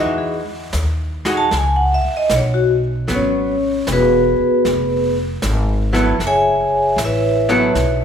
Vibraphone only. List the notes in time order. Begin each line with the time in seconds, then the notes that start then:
0.00 E5
0.18 G#4
1.37 A5
1.57 G#5
1.76 F#5
1.94 E5
2.17 D#5
2.36 C#5
2.54 F#4
3.15 C#4 C#5
3.92 B3 F#4 G#4 B4
6.27 G#4 C#5 E5 G#5
7.04 E4 B4 C#5 E5